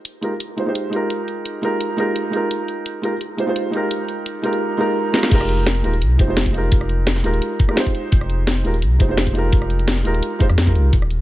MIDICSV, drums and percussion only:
0, 0, Header, 1, 2, 480
1, 0, Start_track
1, 0, Key_signature, -4, "minor"
1, 0, Tempo, 350877
1, 1512, Time_signature, 4, 2, 24, 8
1, 15338, End_track
2, 0, Start_track
2, 0, Title_t, "Drums"
2, 70, Note_on_c, 9, 42, 93
2, 207, Note_off_c, 9, 42, 0
2, 309, Note_on_c, 9, 42, 65
2, 446, Note_off_c, 9, 42, 0
2, 551, Note_on_c, 9, 42, 85
2, 688, Note_off_c, 9, 42, 0
2, 790, Note_on_c, 9, 42, 65
2, 927, Note_off_c, 9, 42, 0
2, 1030, Note_on_c, 9, 42, 89
2, 1167, Note_off_c, 9, 42, 0
2, 1270, Note_on_c, 9, 42, 68
2, 1407, Note_off_c, 9, 42, 0
2, 1509, Note_on_c, 9, 42, 89
2, 1646, Note_off_c, 9, 42, 0
2, 1751, Note_on_c, 9, 42, 61
2, 1888, Note_off_c, 9, 42, 0
2, 1990, Note_on_c, 9, 42, 92
2, 2127, Note_off_c, 9, 42, 0
2, 2231, Note_on_c, 9, 42, 65
2, 2368, Note_off_c, 9, 42, 0
2, 2470, Note_on_c, 9, 42, 86
2, 2607, Note_off_c, 9, 42, 0
2, 2712, Note_on_c, 9, 42, 63
2, 2849, Note_off_c, 9, 42, 0
2, 2952, Note_on_c, 9, 42, 87
2, 3088, Note_off_c, 9, 42, 0
2, 3192, Note_on_c, 9, 42, 66
2, 3328, Note_off_c, 9, 42, 0
2, 3433, Note_on_c, 9, 42, 86
2, 3570, Note_off_c, 9, 42, 0
2, 3672, Note_on_c, 9, 42, 63
2, 3809, Note_off_c, 9, 42, 0
2, 3911, Note_on_c, 9, 42, 93
2, 4048, Note_off_c, 9, 42, 0
2, 4152, Note_on_c, 9, 42, 64
2, 4289, Note_off_c, 9, 42, 0
2, 4390, Note_on_c, 9, 42, 83
2, 4527, Note_off_c, 9, 42, 0
2, 4630, Note_on_c, 9, 42, 63
2, 4767, Note_off_c, 9, 42, 0
2, 4870, Note_on_c, 9, 42, 87
2, 5006, Note_off_c, 9, 42, 0
2, 5109, Note_on_c, 9, 42, 65
2, 5246, Note_off_c, 9, 42, 0
2, 5348, Note_on_c, 9, 42, 88
2, 5485, Note_off_c, 9, 42, 0
2, 5589, Note_on_c, 9, 42, 61
2, 5725, Note_off_c, 9, 42, 0
2, 5829, Note_on_c, 9, 42, 94
2, 5966, Note_off_c, 9, 42, 0
2, 6069, Note_on_c, 9, 42, 64
2, 6196, Note_off_c, 9, 42, 0
2, 6196, Note_on_c, 9, 42, 36
2, 6333, Note_off_c, 9, 42, 0
2, 7030, Note_on_c, 9, 38, 62
2, 7157, Note_off_c, 9, 38, 0
2, 7157, Note_on_c, 9, 38, 73
2, 7270, Note_on_c, 9, 42, 93
2, 7270, Note_on_c, 9, 49, 99
2, 7271, Note_on_c, 9, 36, 115
2, 7293, Note_off_c, 9, 38, 0
2, 7397, Note_on_c, 9, 37, 35
2, 7407, Note_off_c, 9, 42, 0
2, 7407, Note_off_c, 9, 49, 0
2, 7408, Note_off_c, 9, 36, 0
2, 7510, Note_on_c, 9, 42, 68
2, 7534, Note_off_c, 9, 37, 0
2, 7647, Note_off_c, 9, 42, 0
2, 7750, Note_on_c, 9, 38, 121
2, 7750, Note_on_c, 9, 42, 98
2, 7887, Note_off_c, 9, 38, 0
2, 7887, Note_off_c, 9, 42, 0
2, 7991, Note_on_c, 9, 42, 70
2, 8119, Note_off_c, 9, 42, 0
2, 8119, Note_on_c, 9, 42, 40
2, 8232, Note_off_c, 9, 42, 0
2, 8232, Note_on_c, 9, 42, 95
2, 8369, Note_off_c, 9, 42, 0
2, 8471, Note_on_c, 9, 42, 68
2, 8472, Note_on_c, 9, 36, 104
2, 8607, Note_off_c, 9, 42, 0
2, 8608, Note_off_c, 9, 36, 0
2, 8711, Note_on_c, 9, 38, 119
2, 8711, Note_on_c, 9, 42, 93
2, 8837, Note_off_c, 9, 42, 0
2, 8837, Note_on_c, 9, 42, 40
2, 8838, Note_on_c, 9, 36, 59
2, 8847, Note_off_c, 9, 38, 0
2, 8950, Note_off_c, 9, 42, 0
2, 8950, Note_on_c, 9, 42, 68
2, 8975, Note_off_c, 9, 36, 0
2, 9087, Note_off_c, 9, 42, 0
2, 9190, Note_on_c, 9, 42, 92
2, 9192, Note_on_c, 9, 36, 123
2, 9316, Note_on_c, 9, 37, 36
2, 9327, Note_off_c, 9, 42, 0
2, 9329, Note_off_c, 9, 36, 0
2, 9430, Note_on_c, 9, 42, 65
2, 9453, Note_off_c, 9, 37, 0
2, 9567, Note_off_c, 9, 42, 0
2, 9669, Note_on_c, 9, 38, 127
2, 9669, Note_on_c, 9, 42, 97
2, 9797, Note_off_c, 9, 38, 0
2, 9797, Note_on_c, 9, 38, 38
2, 9806, Note_off_c, 9, 42, 0
2, 9907, Note_on_c, 9, 42, 68
2, 9933, Note_off_c, 9, 38, 0
2, 10036, Note_off_c, 9, 42, 0
2, 10036, Note_on_c, 9, 42, 37
2, 10149, Note_off_c, 9, 42, 0
2, 10149, Note_on_c, 9, 42, 89
2, 10286, Note_off_c, 9, 42, 0
2, 10390, Note_on_c, 9, 42, 63
2, 10392, Note_on_c, 9, 36, 110
2, 10517, Note_on_c, 9, 37, 49
2, 10527, Note_off_c, 9, 42, 0
2, 10528, Note_off_c, 9, 36, 0
2, 10630, Note_on_c, 9, 38, 125
2, 10630, Note_on_c, 9, 42, 93
2, 10653, Note_off_c, 9, 37, 0
2, 10757, Note_off_c, 9, 42, 0
2, 10757, Note_on_c, 9, 42, 37
2, 10759, Note_on_c, 9, 36, 62
2, 10767, Note_off_c, 9, 38, 0
2, 10871, Note_off_c, 9, 42, 0
2, 10871, Note_on_c, 9, 42, 68
2, 10895, Note_off_c, 9, 36, 0
2, 11008, Note_off_c, 9, 42, 0
2, 11110, Note_on_c, 9, 42, 91
2, 11112, Note_on_c, 9, 36, 125
2, 11235, Note_on_c, 9, 37, 36
2, 11247, Note_off_c, 9, 42, 0
2, 11249, Note_off_c, 9, 36, 0
2, 11349, Note_on_c, 9, 42, 63
2, 11372, Note_off_c, 9, 37, 0
2, 11485, Note_off_c, 9, 42, 0
2, 11590, Note_on_c, 9, 38, 127
2, 11590, Note_on_c, 9, 42, 90
2, 11727, Note_off_c, 9, 38, 0
2, 11727, Note_off_c, 9, 42, 0
2, 11829, Note_on_c, 9, 42, 65
2, 11957, Note_off_c, 9, 42, 0
2, 11957, Note_on_c, 9, 42, 36
2, 12070, Note_off_c, 9, 42, 0
2, 12070, Note_on_c, 9, 42, 91
2, 12207, Note_off_c, 9, 42, 0
2, 12311, Note_on_c, 9, 42, 64
2, 12312, Note_on_c, 9, 36, 119
2, 12448, Note_off_c, 9, 42, 0
2, 12449, Note_off_c, 9, 36, 0
2, 12551, Note_on_c, 9, 38, 120
2, 12551, Note_on_c, 9, 42, 90
2, 12677, Note_off_c, 9, 42, 0
2, 12677, Note_on_c, 9, 42, 37
2, 12678, Note_on_c, 9, 36, 64
2, 12688, Note_off_c, 9, 38, 0
2, 12791, Note_off_c, 9, 42, 0
2, 12791, Note_on_c, 9, 42, 68
2, 12815, Note_off_c, 9, 36, 0
2, 12927, Note_off_c, 9, 42, 0
2, 13031, Note_on_c, 9, 42, 87
2, 13032, Note_on_c, 9, 36, 125
2, 13156, Note_on_c, 9, 37, 33
2, 13167, Note_off_c, 9, 42, 0
2, 13169, Note_off_c, 9, 36, 0
2, 13270, Note_on_c, 9, 42, 60
2, 13293, Note_off_c, 9, 37, 0
2, 13398, Note_off_c, 9, 42, 0
2, 13398, Note_on_c, 9, 42, 35
2, 13511, Note_off_c, 9, 42, 0
2, 13511, Note_on_c, 9, 38, 127
2, 13511, Note_on_c, 9, 42, 86
2, 13637, Note_off_c, 9, 38, 0
2, 13637, Note_on_c, 9, 38, 37
2, 13648, Note_off_c, 9, 42, 0
2, 13750, Note_on_c, 9, 42, 62
2, 13774, Note_off_c, 9, 38, 0
2, 13878, Note_off_c, 9, 42, 0
2, 13878, Note_on_c, 9, 42, 36
2, 13990, Note_off_c, 9, 42, 0
2, 13990, Note_on_c, 9, 42, 88
2, 14127, Note_off_c, 9, 42, 0
2, 14231, Note_on_c, 9, 36, 107
2, 14231, Note_on_c, 9, 42, 64
2, 14358, Note_off_c, 9, 42, 0
2, 14358, Note_on_c, 9, 37, 45
2, 14358, Note_on_c, 9, 42, 34
2, 14368, Note_off_c, 9, 36, 0
2, 14472, Note_off_c, 9, 42, 0
2, 14472, Note_on_c, 9, 38, 120
2, 14472, Note_on_c, 9, 42, 85
2, 14494, Note_off_c, 9, 37, 0
2, 14598, Note_on_c, 9, 36, 62
2, 14599, Note_off_c, 9, 42, 0
2, 14599, Note_on_c, 9, 42, 35
2, 14608, Note_off_c, 9, 38, 0
2, 14711, Note_off_c, 9, 42, 0
2, 14711, Note_on_c, 9, 42, 60
2, 14735, Note_off_c, 9, 36, 0
2, 14848, Note_off_c, 9, 42, 0
2, 14951, Note_on_c, 9, 42, 90
2, 14952, Note_on_c, 9, 36, 115
2, 15079, Note_on_c, 9, 37, 33
2, 15088, Note_off_c, 9, 36, 0
2, 15088, Note_off_c, 9, 42, 0
2, 15191, Note_on_c, 9, 42, 60
2, 15215, Note_off_c, 9, 37, 0
2, 15328, Note_off_c, 9, 42, 0
2, 15338, End_track
0, 0, End_of_file